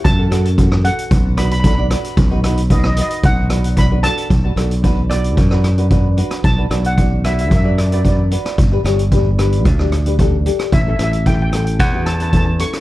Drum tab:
HH |x-xxx-xxx-xxx-xx|x-xxx-xxx-xxx-xx|x-xxx-xxx-xxx-xx|x-xxx-xxx-xxx-xx|
SD |--r--r----r---r-|--r--r----r---r-|--r---r--rr----r|--r---r---r----r|
BD |o---o---o---o---|o---o---o---o---|o---o---o---o---|o---o---o---o---|

HH |x-xxx-xxx-xxx-xx|x-xxx-xxx-xxx-xx|
SD |--r---r--rr----r|--r---r---r----r|
BD |o---o---o---o---|o---o---o---o---|